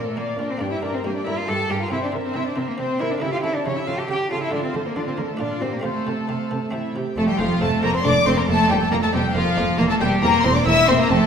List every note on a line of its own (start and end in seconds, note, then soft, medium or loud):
0.00 0.15 A#2 soft
0.00 0.56 A#3 soft
0.00 0.56 D4 soft
0.00 0.18 A#4 soft
0.00 0.17 D5 soft
0.06 0.18 A3 medium
0.06 0.17 A4 soft
0.16 0.37 A#2 soft
0.16 0.25 A#2 soft
0.16 0.38 A#3 medium
0.16 0.39 A#4 soft
0.16 0.38 D5 soft
0.16 0.37 F5 soft
0.39 0.47 A#2 soft
0.39 0.59 A#2 soft
0.39 0.52 D4 medium
0.39 0.61 A#4 soft
0.39 0.50 D5 soft
0.39 0.61 D5 soft
0.49 0.62 C4 medium
0.49 0.60 C5 soft
0.57 0.68 G2 medium
0.57 0.80 G2 soft
0.57 1.86 A#3 soft
0.57 1.87 D4 soft
0.57 0.72 D4 medium
0.57 0.81 G4 soft
0.57 0.65 D5 medium
0.57 0.81 G5 soft
0.71 0.82 E4 medium
0.71 0.82 E5 medium
0.82 0.90 G2 soft
0.82 1.02 G2 soft
0.82 0.95 D4 medium
0.82 1.04 A#4 soft
0.82 0.93 D5 medium
0.82 1.04 A#5 soft
0.94 1.04 C4 medium
0.94 0.98 C5 soft
1.04 1.12 G2 medium
1.04 1.24 G2 soft
1.04 1.09 A#3 medium
1.04 1.26 G4 soft
1.04 1.15 A#4 medium
1.04 1.26 G5 soft
1.15 1.26 D4 medium
1.15 1.26 D5 medium
1.26 1.34 G2 soft
1.26 1.46 G2 soft
1.26 1.39 E4 medium
1.26 1.48 A#4 soft
1.26 1.37 E5 medium
1.26 1.48 A#5 soft
1.37 1.50 F4 medium
1.37 1.48 F5 medium
1.47 1.56 G2 medium
1.47 1.68 G2 soft
1.47 1.68 G4 soft
1.47 1.72 A4 medium
1.47 1.68 G5 soft
1.47 1.70 A5 medium
1.69 1.89 G2 soft
1.69 1.78 G2 medium
1.69 1.81 G4 medium
1.69 1.91 A#4 soft
1.69 1.81 G5 soft
1.69 1.91 A#5 soft
1.80 1.91 F4 medium
1.80 1.85 F5 soft
1.88 2.11 C3 soft
1.88 2.00 C3 medium
1.88 3.16 A#3 soft
1.88 3.17 C4 soft
1.88 1.96 E4 medium
1.88 2.12 C5 soft
1.88 2.02 E5 medium
1.88 2.11 G5 soft
2.02 2.12 D4 medium
2.02 2.10 D5 medium
2.12 2.32 C3 soft
2.12 2.22 C3 medium
2.12 2.35 A#4 soft
2.12 2.34 E5 soft
2.24 2.37 C4 medium
2.24 2.35 C5 medium
2.34 2.54 C3 soft
2.34 2.44 C3 medium
2.34 2.46 E4 medium
2.34 2.57 C5 soft
2.34 2.46 E5 medium
2.34 2.57 G5 soft
2.46 2.59 D4 medium
2.46 2.57 D5 medium
2.56 2.76 C3 soft
2.56 2.65 C3 medium
2.56 2.69 C4 medium
2.56 2.78 A#4 soft
2.56 2.68 C5 medium
2.56 2.78 E5 soft
2.68 2.80 A#3 medium
2.68 2.78 A#4 soft
2.78 2.98 C3 medium
2.78 2.87 C3 medium
2.78 3.02 C4 medium
2.78 2.99 C5 soft
2.78 3.00 C5 medium
2.78 2.98 G5 soft
2.99 3.19 C3 soft
2.99 3.08 C3 soft
2.99 3.13 E4 medium
2.99 3.22 A#4 medium
2.99 3.22 E5 soft
2.99 3.11 E5 medium
3.11 3.23 D4 medium
3.11 3.22 D5 soft
3.18 3.42 C#3 soft
3.18 3.30 C#3 medium
3.18 4.47 A3 soft
3.18 4.48 E4 soft
3.18 3.32 E4 medium
3.18 3.33 E5 medium
3.18 3.42 G5 soft
3.22 3.43 G4 soft
3.32 3.42 F4 medium
3.32 3.37 F5 medium
3.43 3.52 C#3 soft
3.43 3.64 C#3 soft
3.43 3.57 E4 medium
3.43 3.66 A4 soft
3.43 3.55 E5 medium
3.43 3.66 A5 soft
3.55 3.65 D4 medium
3.55 3.66 D5 medium
3.66 3.85 C#3 soft
3.66 3.74 C#3 medium
3.66 3.79 C#4 medium
3.66 3.88 G4 soft
3.66 3.76 C#5 medium
3.66 3.88 G5 soft
3.76 3.87 E4 medium
3.76 3.87 E5 medium
3.87 4.07 C#3 soft
3.87 3.96 C#3 medium
3.87 4.01 F4 medium
3.87 4.10 A4 soft
3.87 3.99 F5 medium
3.87 4.10 A5 soft
3.98 4.09 G4 medium
3.98 4.08 G5 medium
4.09 4.29 C#3 soft
4.09 4.17 C#3 medium
4.09 4.31 G4 medium
4.09 4.30 G4 soft
4.09 4.17 G5 medium
4.09 4.30 G5 soft
4.31 4.51 C#3 soft
4.31 4.39 C#3 soft
4.31 4.42 F4 medium
4.31 4.53 A4 soft
4.31 4.42 F5 medium
4.31 4.53 A5 soft
4.42 4.52 E4 medium
4.42 4.53 E5 soft
4.49 4.72 D3 soft
4.49 4.61 D3 medium
4.49 5.36 A3 soft
4.49 4.63 D4 medium
4.49 5.36 F4 soft
4.49 4.57 D5 medium
4.54 4.74 F4 soft
4.54 4.74 F5 soft
4.64 4.72 C4 medium
4.64 4.85 C5 medium
4.74 4.94 D3 soft
4.74 4.83 D3 medium
4.74 4.96 A4 soft
4.74 4.97 D5 soft
4.85 4.97 A#3 medium
4.85 4.97 A#4 soft
4.96 5.04 D3 soft
4.96 5.16 D3 soft
4.96 5.06 D4 medium
4.96 5.18 F4 soft
4.96 5.01 D5 medium
4.96 5.19 F5 soft
5.07 5.11 C4 medium
5.07 5.18 C5 medium
5.17 5.38 D3 soft
5.17 5.26 D3 medium
5.17 5.22 A#3 medium
5.17 5.40 A4 soft
5.17 5.29 A#4 soft
5.17 5.40 D5 soft
5.28 5.41 A3 medium
5.28 5.40 A4 soft
5.37 5.60 A#2 soft
5.37 5.48 A#2 medium
5.37 5.81 D4 soft
5.37 5.62 D4 medium
5.37 5.82 F4 soft
5.37 5.61 F4 soft
5.37 5.62 D5 medium
5.37 5.61 F5 soft
5.61 5.70 A#2 soft
5.61 5.82 A#2 soft
5.61 5.74 C4 medium
5.61 5.84 G4 soft
5.61 5.73 C5 soft
5.61 5.84 G5 soft
5.73 5.83 A#3 medium
5.73 5.84 A#4 soft
5.80 6.68 A3 soft
5.80 6.69 C4 soft
5.80 6.69 F4 soft
5.80 6.05 C5 soft
5.84 6.04 C3 soft
5.84 5.93 C3 medium
5.84 6.93 A3 medium
5.84 6.93 A4 medium
5.84 6.05 F5 soft
6.06 6.15 C3 soft
6.06 6.27 C3 soft
6.06 6.29 A4 soft
6.06 6.29 A5 soft
6.28 6.49 C3 soft
6.28 6.37 C3 soft
6.28 6.51 C5 soft
6.28 6.51 F5 soft
6.51 6.71 C3 soft
6.51 6.59 C3 soft
6.51 6.73 A4 soft
6.51 6.73 A5 soft
6.71 6.81 C3 soft
6.71 6.93 C3 soft
6.71 7.15 C4 soft
6.71 7.15 E4 soft
6.71 6.94 E4 soft
6.71 6.93 E5 soft
6.95 7.04 C3 soft
6.95 7.15 C3 soft
6.95 7.17 G4 soft
6.95 7.17 G5 soft
7.17 7.25 F1 medium
7.17 7.25 F2 medium
7.17 7.37 F2 medium
7.17 7.29 A3 medium
7.17 7.26 A3 medium
7.17 7.27 A4 medium
7.17 7.22 A5 medium
7.27 7.40 G3 medium
7.27 7.39 G4 medium
7.27 7.39 G5 medium
7.39 7.47 F1 medium
7.39 7.59 F2 medium
7.39 7.47 F2 medium
7.39 7.60 F3 medium
7.39 7.48 A3 medium
7.39 7.61 F4 medium
7.39 7.62 C5 medium
7.39 7.61 F5 medium
7.61 7.69 F1 medium
7.61 7.81 F2 medium
7.61 7.69 F2 medium
7.61 7.82 A3 medium
7.61 7.70 A3 medium
7.61 7.84 C4 medium
7.61 7.83 A4 medium
7.61 7.69 A5 loud
7.82 7.91 F1 medium
7.82 8.02 F2 medium
7.82 7.91 F2 medium
7.82 7.92 A3 medium
7.82 7.95 A#3 medium
7.82 7.94 A#4 medium
7.82 8.06 C5 soft
7.82 7.94 A#5 loud
7.93 8.03 C4 medium
7.93 8.05 C5 medium
7.93 8.05 C6 loud
8.04 8.13 F1 medium
8.04 8.24 F2 medium
8.04 8.13 F2 medium
8.04 8.13 A3 medium
8.04 8.12 D4 medium
8.04 8.28 A4 medium
8.04 8.26 D5 medium
8.04 8.27 D6 loud
8.26 8.35 F1 medium
8.26 8.46 F2 medium
8.26 8.34 F2 medium
8.26 8.35 A3 medium
8.26 8.38 C4 medium
8.26 8.48 C5 medium
8.26 8.31 C5 medium
8.26 8.38 C6 loud
8.37 8.47 A#3 medium
8.37 8.41 A#4 medium
8.37 8.49 A#5 medium
8.48 8.57 F1 medium
8.48 8.68 F2 medium
8.48 8.56 F2 medium
8.48 8.70 A3 loud
8.48 8.56 A#3 medium
8.48 8.70 A4 medium
8.48 8.70 A5 loud
8.69 8.78 F1 medium
8.69 8.89 F2 medium
8.69 8.78 F2 medium
8.69 8.81 G3 medium
8.69 8.78 A#3 medium
8.69 8.81 G4 medium
8.69 8.93 D5 medium
8.69 8.81 G5 medium
8.80 8.90 A3 medium
8.80 8.91 A4 medium
8.80 8.92 A5 loud
8.91 9.00 F1 medium
8.91 9.12 F2 medium
8.91 9.00 F2 medium
8.91 8.95 A#3 medium
8.91 9.01 A#3 medium
8.91 9.15 D4 medium
8.91 8.96 A#4 medium
8.91 8.96 A#5 loud
9.01 9.13 A3 medium
9.01 9.13 A4 medium
9.01 9.07 A5 medium
9.13 9.22 F1 medium
9.13 9.33 F2 medium
9.13 9.21 F2 medium
9.13 9.33 G3 medium
9.13 9.22 A#3 medium
9.13 9.21 G4 medium
9.13 9.36 D5 medium
9.13 9.35 G5 loud
9.34 9.44 F1 medium
9.34 9.55 F2 medium
9.34 9.43 F2 medium
9.34 9.79 F3 medium
9.34 9.44 A#3 medium
9.34 9.78 F4 loud
9.34 9.58 A#4 medium
9.34 9.79 F5 loud
9.57 9.65 F1 medium
9.57 9.77 F2 medium
9.57 9.65 F2 medium
9.57 9.65 A#3 medium
9.57 9.79 D5 medium
9.78 9.87 E1 medium
9.78 9.87 E2 medium
9.78 9.99 E2 medium
9.78 9.91 A#3 medium
9.78 9.87 A#3 medium
9.78 9.90 A#4 medium
9.78 9.83 A#5 loud
9.89 10.00 A3 medium
9.89 10.00 A4 medium
9.89 9.94 A5 loud
10.00 10.09 E1 medium
10.00 10.20 E2 medium
10.00 10.09 E2 medium
10.00 10.21 G3 loud
10.00 10.09 A#3 medium
10.00 10.22 G4 loud
10.00 10.24 C5 medium
10.00 10.08 G5 loud
10.22 10.31 E1 medium
10.22 10.42 E2 medium
10.22 10.31 E2 medium
10.22 10.46 A#3 loud
10.22 10.31 A#3 medium
10.22 10.45 C4 medium
10.22 10.44 A#4 medium
10.22 10.44 A#5 loud
10.44 10.53 E1 medium
10.44 10.52 E2 medium
10.44 10.64 E2 medium
10.44 10.53 A#3 medium
10.44 10.57 C4 medium
10.44 10.55 C5 medium
10.44 10.67 C5 medium
10.44 10.55 C6 loud
10.54 10.65 D4 medium
10.54 10.66 D5 medium
10.54 10.66 D6 medium
10.66 10.75 E1 medium
10.66 10.86 E2 medium
10.66 10.74 E2 medium
10.66 10.75 A#3 medium
10.66 10.89 E4 medium
10.66 10.89 A#4 medium
10.66 10.88 E5 loud
10.66 10.88 E6 loud
10.88 10.97 E1 medium
10.88 10.96 E2 medium
10.88 11.08 E2 medium
10.88 10.97 A#3 medium
10.88 11.01 C4 loud
10.88 10.92 C5 medium
10.88 11.10 C5 medium
10.88 10.99 C6 loud
10.98 11.11 A#3 medium
10.98 11.09 A#4 medium
10.98 11.10 A#5 loud
11.10 11.19 F1 medium
11.10 11.27 F2 medium
11.10 11.18 F2 loud
11.10 11.27 A3 loud
11.10 11.18 C4 medium
11.10 11.27 A4 loud
11.10 11.27 A5 loud